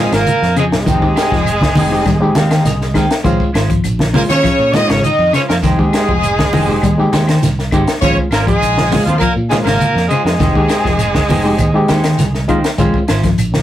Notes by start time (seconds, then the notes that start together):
Already playing: F3 G#3 C4 C#4
0.00 G#2 G#3 F4 G#4
0.12 G#1 A#2 A#3 A#4, muted clean electric guitar stroke, snare, closed hi-hat, claves, shekere
0.26 closed hi-hat, high conga, shekere
0.42 F2, snare, shekere
0.56 G#2 C#3 F3 G#3 C4 C#4 G#4, closed hi-hat, claves, shekere
0.72 C2 G#2 G#3 G#4, snare, shekere
0.86 F1 D#3 G#3 C4 D#4 G4, kick, closed hi-hat, high conga, low conga, shekere
1.01 D#2 G#3 C4 D#4 G4, kick, shekere
1.16 G#3 D#4 G4, muted clean electric guitar stroke, snare, closed hi-hat, claves, shekere
1.31 F1 F3, kick, snare, shekere
1.45 closed hi-hat, high conga, claves, shekere
1.61 kick, snare, high conga, shekere
1.75 F1 D#3 G#3 C4 D#4 G4, open hi-hat, high conga, low conga, shekere
1.91 G#3 C4 D#4 G4, shekere
2.05 D#2 G3, kick, snare, closed hi-hat, high conga, claves, shekere
2.21 G#3 C4 D#4 G4, shekere
2.35 D#2 G#3 C4 G4 F5, muted clean electric guitar stroke, snare, closed hi-hat, high conga, shekere
2.50 D#3 C4 D#4 G4, snare, closed hi-hat, claves, shekere
2.65 C2 D#5, snare, closed hi-hat, high conga, shekere
2.81 snare, shekere
2.94 D#2 D#3 G#3 C4 D#4 G4 A#4, kick, snare, closed hi-hat, claves, shekere
3.11 snare, closed hi-hat, shekere
3.24 A#1 D#3 G#3 C4 C#4 F4 C5, muted clean electric guitar stroke, kick, closed hi-hat, high conga, low conga, shekere
3.40 kick, shekere
3.53 G#1 G#3 C#4 F4 C5, snare, closed hi-hat, claves, shekere
3.70 F3, kick, closed hi-hat, shekere
3.84 A#1, closed hi-hat, high conga, claves, shekere
3.99 C#4 F4, snare, high conga, shekere
4.14 A#2 C#3 G#3 A#3 C4 C#4 F4 A#4 C5, open hi-hat, high conga, low conga, shekere
4.28 D#2 C#3 C#4 F4 C5 C#5, snare, closed hi-hat, low conga, shekere
4.43 F3, kick, snare, closed hi-hat, high conga, claves, shekere
4.58 A#2 C#4 F4, shekere
4.73 D#3 G#3 C4 C#4 D#4 F4 C5 D#5, snare, closed hi-hat, high conga, shekere
4.88 G#1 C#3 C#4 C#5, snare, closed hi-hat, claves, shekere
5.03 D#3 D#4 D#5, closed hi-hat, high conga, shekere
5.18 F2, shekere
5.33 C#3 G#3 C#4 F4 C5 C#5, snare, closed hi-hat, claves, shekere
5.48 F2 A#2 A#3 A#4, snare, shekere
5.62 F1 G#2 D#3 G#3 D#4 G4 G#4 C5, kick, snare, closed hi-hat, high conga, low conga, shekere
5.78 D#2 G#3 C4 D#4 G4, kick, shekere
5.93 G#3 D#4 G4 C5, snare, closed hi-hat, claves, shekere
6.08 F1 F3, kick, shekere
6.23 closed hi-hat, high conga, claves, shekere
6.38 kick, snare, high conga, shekere
6.52 F1 D#3 G#3 D#4 G4 C5, open hi-hat, high conga, low conga, shekere
6.67 G#3 C4 D#4 G4 C5, low conga, shekere
6.82 D#2 G3, kick, closed hi-hat, high conga, claves, shekere
6.98 G#3 C4 D#4 G4, shekere
7.12 D#2 G#3 D#4 G4 C5, snare, closed hi-hat, high conga, shekere
7.27 D#3 D#4 G4 C5, snare, closed hi-hat, claves, shekere
7.42 C2, snare, closed hi-hat, high conga, shekere
7.59 snare, shekere
7.71 G#1 D#3 G#3 C4 D#4 G4 C5, kick, closed hi-hat, claves, shekere
7.87 snare, closed hi-hat, shekere
8.01 A#1 C#3 D#3 G#3 C4 C#4 F4 C5 C#5, kick, closed hi-hat, high conga, low conga, shekere
8.17 kick, shekere
8.30 G#1 A#2 G#3 A#3 C#4 A#4 C5, snare, closed hi-hat, claves, shekere
8.46 G#2 F3 G#3 G#4, kick, closed hi-hat, shekere
8.61 A#1, closed hi-hat, high conga, claves, shekere
8.77 C#4 F4, snare, high conga, shekere
8.91 C#3 G#3 C4 C#4 F4 C5, snare, open hi-hat, high conga, low conga, shekere
9.05 D#2 F2 F3 C#4 F4 C5, closed hi-hat, low conga, shekere
9.18 A#2 F3 A#3 A#4, kick, closed hi-hat, claves, shekere
9.23 high conga
9.36 A#2 C#4 F4, shekere
9.49 G#2 G#3 C4 C#4 F4 G#4 C5, snare, closed hi-hat, high conga, shekere
9.63 G#1 A#2 C#3 A#3 A#4, closed hi-hat, claves, shekere
9.67 snare
9.80 closed hi-hat, high conga, shekere
9.95 F2, snare, shekere
10.08 G#2 C#3 G#3 F4 G#4 C5, muted clean electric guitar stroke, closed hi-hat, claves, shekere
10.23 F2 G#2 G#3 G#4, snare, shekere
10.39 F1 D#3 G#3 D#4 G4 C5, kick, snare, closed hi-hat, high conga, low conga, shekere
10.55 D#2 G#3 C4 D#4 G4, kick, shekere
10.68 G#3 G4 C5, muted clean electric guitar stroke, snare, closed hi-hat, claves, shekere
10.85 F1 F3, kick, snare, shekere
10.99 closed hi-hat, high conga, claves, shekere
11.14 kick, snare, high conga, shekere
11.29 F1 G#3 D#4 G4 C5, muted clean electric guitar stroke, open hi-hat, high conga, low conga, shekere
11.44 G#3 C4 D#4 G4 C5, shekere
11.58 D#2, muted clean electric guitar stroke, kick, closed hi-hat, high conga, claves, shekere
11.74 G#3 C4 D#4 G4, shekere
11.88 D#2 G#3 D#4 G4 C5, snare, closed hi-hat, high conga, shekere
12.04 D#3 D#4 G4 C5, snare, closed hi-hat, claves, shekere
12.18 C2, snare, closed hi-hat, high conga, shekere
12.34 snare, shekere
12.48 D#2 D#3 G#3 C4 D#4 F4 G4 C5, kick, closed hi-hat, claves, shekere
12.64 snare, closed hi-hat, shekere
12.78 A#1 D#3 G#3 C4 C#4 F4 C5, kick, closed hi-hat, high conga, low conga, shekere
12.94 kick, shekere
13.07 G#1 G#3 C#4 F4 C5, snare, closed hi-hat, claves, shekere
13.24 F3, kick, snare, closed hi-hat, shekere
13.38 A#1, closed hi-hat, high conga, claves, shekere
13.52 C#4 F4, snare, high conga, shekere